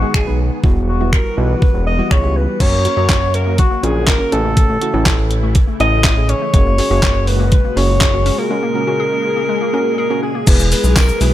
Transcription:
Already playing: string machine D#3 G#3 B3 G#4, alto saxophone F#4
0.02 synth pluck G#3 B3 D#4 G#4
0.14 analog synth bass B1, alto saxophone G#4, finger snap, kick
0.27 synth pluck G#3 B3 D#4 B4
0.63 analog synth bass E1, string machine E3 G3 F#4, synth pluck G3 B3 E4 F#4, kick
0.88 alto saxophone F#4
1.00 synth pluck G3 B3 E4 F#4
1.13 alto saxophone A#4, finger snap, kick
1.37 analog synth bass B1, synth pluck G3 B3 E4 F#4, alto saxophone B4
1.62 kick
1.74 analog synth bass E1
1.87 alto saxophone D#5
1.99 synth pluck G3 B3 E4 F#4
2.11 analog synth bass C#2, alto saxophone C#5, finger snap, kick
2.23 synth pluck G3 B3 E4 G4
2.36 alto saxophone B4
2.60 analog synth bass F#2, string machine C#3 F#3 A#3 F#4, synth pluck F#3 A#3 C#4 F#4 A#4, alto saxophone C#5, kick, closed hi-hat, crash
2.73 synth pluck A#3
2.85 synth pluck A#3 C#4 F#4 A#4, closed hi-hat
2.97 analog synth bass F#2, synth pluck A#3 C#4 F#4 C#5
3.09 synth pluck F#5, kick, snare, clap, closed hi-hat
3.34 alto saxophone A#4, closed hi-hat
3.46 synth pluck A#3
3.58 synth pluck F#3, alto saxophone F#4, kick, closed hi-hat
3.71 synth pluck A#3
3.83 analog synth bass A#1, synth pluck A#3 C#4 F#4 A#4, alto saxophone G#4, closed hi-hat
4.07 alto saxophone A#4, synth pluck F#5, kick, snare, clap, closed hi-hat
4.20 synth pluck A#3 C#4 F#4 A#4
4.32 analog synth bass A1, string machine E3 A3 E4, synth pluck A3 C#4 E4 A4, alto saxophone A4, closed hi-hat
4.45 synth pluck A3
4.57 synth pluck E3, kick, closed hi-hat
4.69 synth pluck A3
4.81 synth pluck A3 C#4 E4 F#4, closed hi-hat
4.93 analog synth bass A1, synth pluck A3 C#4 E4 A4
5.06 synth pluck E5, kick, snare, clap, closed hi-hat
5.31 closed hi-hat
5.43 synth pluck A3
5.55 synth pluck E3, kick, closed hi-hat
5.68 synth pluck A3
5.80 analog synth bass A1, synth pluck A3 C#4 E4 A4, alto saxophone D#5, closed hi-hat
6.04 synth pluck E5, kick, snare, clap, closed hi-hat
6.17 synth pluck A3 C#4 E4 G#4
6.29 synth pluck C#4, alto saxophone C#5, closed hi-hat
6.42 synth pluck A3
6.54 analog synth bass F#1, string machine A#2 C#3 G#3 F#4, synth pluck G#3 A#3 C#4 F#4 G#4, kick, closed hi-hat
6.66 synth pluck A#3
6.78 synth pluck A#3 C#4 F#4 G#4, open hi-hat
6.90 analog synth bass F#1, synth pluck A#3 C#4 F#4 G#4
7.02 synth pluck G#4, kick, snare, clap, closed hi-hat
7.27 alto saxophone B4, open hi-hat
7.40 synth pluck A#3
7.52 synth pluck G#3, kick, closed hi-hat
7.65 synth pluck A#3
7.76 analog synth bass F#1, synth pluck A#3 C#4 F#4 G#4, alto saxophone C#5, open hi-hat
8.01 synth pluck G#4, kick, snare, clap, closed hi-hat
8.13 synth pluck A#3 C#4 F#4 G#4
8.26 synth pluck C#4, open hi-hat
8.38 synth pluck A#3, alto saxophone A#4
8.50 synth pluck G#3 A#3 C#4 F#4 G#4, string machine G#4
8.63 synth pluck A#3
8.75 synth pluck A#3 C#4 F#4 A#4
8.87 synth pluck A#3 C#4 F#4 G#4
9.00 synth pluck G#4
9.37 synth pluck A#3
9.49 synth pluck G#3
9.61 synth pluck A#3
9.73 synth pluck A#3 C#4 F#4 A#4
9.98 synth pluck G#4, alto saxophone A#4
10.10 synth pluck A#3 C#4 F#4 G#4
10.23 synth pluck C#4, alto saxophone G#4
10.35 synth pluck A#3
10.47 analog synth bass E1, string machine E3 G#3 B3 G#4, synth pluck G#3 B3 E4 G#4, alto saxophone B4, kick, closed hi-hat, crash, shaker
10.59 synth pluck G#3 B3 E4 G#4, shaker
10.72 alto saxophone B4, open hi-hat, shaker
10.84 analog synth bass B1, shaker
10.96 alto saxophone A#4, kick, snare, clap, closed hi-hat, tambourine, shaker
11.09 shaker
11.21 analog synth bass B1, synth pluck G#3 B3 E4 G#4, alto saxophone B4, open hi-hat, shaker

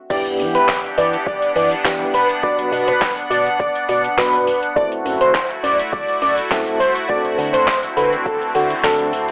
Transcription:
0.10 fm bass E2, analog synth pad E3 B3 D4 G4 F#5, synth keys G3 B3 D4 E4 G4, analog synth lead D5, kick, crash, shaker
0.26 closed hi-hat, shaker
0.39 fm bass E3, open hi-hat, shaker
0.55 analog synth lead B4, closed hi-hat, shaker
0.68 fm bass E2, kick, snare, clap, tambourine, shaker
0.84 closed hi-hat, shaker
0.98 fm bass E3, analog synth lead D5, open hi-hat, shaker
1.14 closed hi-hat, shaker
1.27 fm bass B1, analog synth lead D5, kick, shaker
1.42 closed hi-hat, shaker
1.56 fm bass E3, analog synth lead D5, open hi-hat, shaker
1.72 closed hi-hat, shaker
1.85 fm bass E3, synth keys G3 B3 D4 E4 G4, kick, snare, clap, tambourine, shaker
2.00 closed hi-hat, shaker
2.14 fm bass A1, analog synth lead B4, open hi-hat, shaker
2.29 closed hi-hat, shaker
2.43 fm bass B1, synth keys F#3 B3 D4 F#4 B4, analog synth lead D5, kick, shaker
2.59 closed hi-hat, shaker
2.72 fm bass B2, open hi-hat, shaker
2.88 analog synth lead B4, closed hi-hat, shaker
3.01 fm bass B1, kick, snare, clap, tambourine, shaker
3.17 closed hi-hat, shaker
3.30 fm bass B2, analog synth lead D5, open hi-hat, shaker
3.47 closed hi-hat, shaker
3.60 fm bass F#1, analog synth lead D5, kick, shaker
3.75 closed hi-hat, shaker
3.89 fm bass B2, analog synth lead D5, open hi-hat, shaker
4.04 closed hi-hat, shaker
4.18 fm bass B2, synth keys F#3 B3 D4 F#4 B4, analog synth lead B4, kick, snare, clap, tambourine, shaker
4.33 closed hi-hat, shaker
4.47 fm bass E1, open hi-hat, shaker
4.63 closed hi-hat, shaker
4.76 fm bass F#1, synth keys A3 C4 E4 F#4 A4, analog synth pad A3 E4 F#4, analog synth lead D5, kick, shaker
4.92 closed hi-hat, shaker
5.06 fm bass F#2, open hi-hat, shaker
5.21 analog synth lead C5, closed hi-hat, shaker
5.34 fm bass F#1, kick, snare, clap, tambourine, shaker
5.50 closed hi-hat, shaker
5.63 fm bass F#2, analog synth lead D5, open hi-hat, shaker
5.79 closed hi-hat, shaker
5.92 fm bass C2, analog synth lead D5, kick, shaker
6.08 closed hi-hat, shaker
6.22 fm bass F#2, analog synth lead D5, open hi-hat, shaker
6.37 closed hi-hat, shaker
6.51 fm bass F#2, synth keys A3 C4 E4 F#4 A4, kick, snare, clap, tambourine, shaker
6.66 closed hi-hat, shaker
6.80 fm bass C2, analog synth lead C5, open hi-hat, shaker
6.96 closed hi-hat, shaker
7.09 fm bass D2, analog synth pad D3 C4, synth keys A3 C4 D4 F#4 A4, analog synth lead D5, kick, shaker
7.25 closed hi-hat, shaker
7.38 fm bass D3, open hi-hat, shaker
7.53 analog synth lead C5, closed hi-hat, shaker
7.67 fm bass D2, kick, snare, clap, tambourine, shaker
7.83 closed hi-hat, shaker
7.97 fm bass D3, analog synth lead B4, open hi-hat, shaker
8.13 closed hi-hat, shaker
8.25 fm bass A1, analog synth lead A4, kick, shaker
8.41 closed hi-hat, shaker
8.54 fm bass D3, analog synth lead F#4, open hi-hat, shaker
8.70 closed hi-hat, shaker
8.84 fm bass D3, synth keys A3 C4 D4 F#4 A4, analog synth lead A4, kick, snare, clap, tambourine, shaker
8.99 closed hi-hat, shaker
9.13 fm bass D2, open hi-hat, shaker
9.28 closed hi-hat, shaker

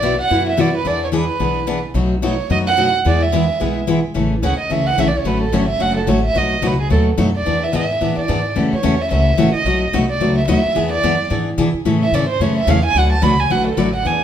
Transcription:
Already playing: upright bass B1, violin D5
0.02 steel-string acoustic guitar B2 E3 B3 E4 F#4
0.21 violin F#5
0.30 upright bass F#2, steel-string acoustic guitar B2 E3 B3 E4 F#4
0.49 violin E5
0.57 steel-string acoustic guitar B2 E3 B3 E4 F#4, violin D5
0.77 violin B4
0.85 upright bass E2, steel-string acoustic guitar E3 B3 D4 G#4, violin D5
1.04 violin C#5
1.12 steel-string acoustic guitar E3 B3 D4 G#4
1.16 violin B4
1.39 upright bass B1, steel-string acoustic guitar E3 B3 D4 G#4
1.67 steel-string acoustic guitar E3 B3 D4 G#4
1.94 upright bass B1, steel-string acoustic guitar B2 F#3 A3 D#4 F#4
2.22 steel-string acoustic guitar B2 F#3 A3 D#4 F#4, violin C#5
2.50 upright bass F#2, steel-string acoustic guitar B2 F#3 A3 D#4 F#4, violin D#5
2.67 violin F#5
2.77 steel-string acoustic guitar B2 F#3 A3 D#4 F#4
3.05 upright bass E2, steel-string acoustic guitar E3 G#3 B3 E4 G#4, violin D5
3.22 violin E5
3.32 steel-string acoustic guitar E3 G#3 B3 E4 G#4
3.60 upright bass B1, steel-string acoustic guitar E3 G#3 B3 E4 G#4
3.87 steel-string acoustic guitar E3 G#3 B3 E4 G#4
4.14 upright bass A1, steel-string acoustic guitar C#3 E3 A3 C#4 G#4
4.42 upright bass D2, steel-string acoustic guitar C#3 E3 A3 C#4 G#4, violin F#5
4.59 violin D#5, muted upright bass stroke
4.70 upright bass C#2, steel-string acoustic guitar C#3 E3 A3 C#4 G#4, violin E5
4.87 violin F#5
4.97 upright bass B1, steel-string acoustic guitar C#3 E3 A3 C#4 G#4, violin E5
5.08 violin D5
5.18 violin C#5
5.24 upright bass A1, steel-string acoustic guitar D3 F#3 A3 C#4 F#4, violin B4
5.42 violin A4
5.52 upright bass G#1, steel-string acoustic guitar D3 F#3 A3 C#4 F#4, violin C#5
5.69 violin E5
5.79 upright bass F#1, steel-string acoustic guitar D3 F#3 A3 C#4 F#4, violin F#5
5.97 violin A4
6.06 upright bass A1, steel-string acoustic guitar D3 F#3 A3 C#4 F#4, violin C#5
6.25 violin E5
6.35 upright bass B1, steel-string acoustic guitar B2 F#3 A3 D#4 F#4, violin D#5
6.62 upright bass C#2, steel-string acoustic guitar B2 F#3 A3 D#4 F#4
6.67 violin B4
6.80 violin G#4
6.90 upright bass D#2, steel-string acoustic guitar B2 F#3 A3 D#4 F#4, violin A4
7.18 upright bass F#2, steel-string acoustic guitar B2 F#3 A3 D#4 F#4
7.37 violin D5
7.46 upright bass E2, steel-string acoustic guitar E3 B3 D4 G#4
7.64 violin E5
7.73 upright bass G#2, steel-string acoustic guitar E3 B3 D4 G#4, violin E5
8.01 upright bass A2, steel-string acoustic guitar E3 B3 D4 G#4
8.17 violin D5, muted upright bass stroke
8.28 upright bass G#2, steel-string acoustic guitar E3 B3 D4 G#4
8.56 upright bass F#2, steel-string acoustic guitar C#3 E3 A3 C#4 F#4
8.72 violin C#5, muted upright bass stroke
8.83 upright bass E2, steel-string acoustic guitar C#3 E3 A3 C#4 F#4
9.02 violin E5
9.10 upright bass C#2, steel-string acoustic guitar C#3 E3 A3 C#4 F#4, violin E5
9.37 upright bass A1, steel-string acoustic guitar C#3 E3 A3 C#4 F#4
9.53 violin D#5, muted upright bass stroke
9.65 upright bass B1, steel-string acoustic guitar B2 F#3 A3 D#4 F#4
9.93 upright bass C2, steel-string acoustic guitar B2 F#3 A3 D#4 F#4
10.10 violin D5
10.20 upright bass C#2, steel-string acoustic guitar B2 F#3 A3 D#4 F#4
10.37 violin E5
10.48 upright bass D#2, steel-string acoustic guitar B2 F#3 A3 D#4 F#4, violin E5
10.64 muted upright bass stroke
10.75 upright bass E2, steel-string acoustic guitar E3 B3 D4 G#4
10.93 violin D5
11.03 upright bass F#2, steel-string acoustic guitar E3 B3 D4 G#4
11.30 upright bass G#2, steel-string acoustic guitar E3 B3 D4 G#4
11.58 upright bass B2, steel-string acoustic guitar E3 B3 D4 G#4
11.74 muted upright bass stroke
11.85 upright bass A2, steel-string acoustic guitar C#3 E3 A3 C#4 G#4
12.03 violin E5
12.12 upright bass G#2, steel-string acoustic guitar C#3 E3 A3 C#4 G#4, violin D5
12.29 violin C5
12.40 upright bass F#2, steel-string acoustic guitar C#3 E3 A3 C#4 G#4, violin C#5
12.58 violin E5
12.67 upright bass E2, steel-string acoustic guitar C#3 E3 A3 C#4 G#4, violin F5
12.85 violin G#5
12.94 upright bass D2, steel-string acoustic guitar D3 F#3 A3 D4 F#4 B4, violin F#5
13.12 violin A5
13.22 upright bass C#2, steel-string acoustic guitar D3 F#3 A3 D4 F#4 B4, violin B5
13.40 violin G#5
13.50 upright bass B1, steel-string acoustic guitar D3 F#3 A3 D4 F#4 B4, violin F#5
13.67 violin A4
13.77 upright bass A1, steel-string acoustic guitar D3 F#3 A3 D4 F#4 B4, violin D5
13.95 violin F#5
14.05 upright bass E2, steel-string acoustic guitar E3 B3 D4 G#4, violin G#5

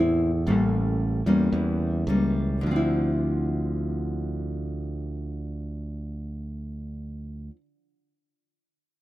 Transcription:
Already playing: fingered electric bass E2, nylon-string guitar A2 E4
0.00 nylon-string guitar C4
0.47 fingered electric bass A1, nylon-string guitar A2 G3 A#3 C#4
1.26 fingered electric bass E2, nylon-string guitar G3 A#3 C#4
1.52 fingered electric bass E2, nylon-string guitar E3
2.07 fingered electric bass C#2, nylon-string guitar G3 A#3 C#4
2.61 fingered electric bass D2, nylon-string guitar D3
2.66 nylon-string guitar F3
2.71 nylon-string guitar C4
2.76 nylon-string guitar E4

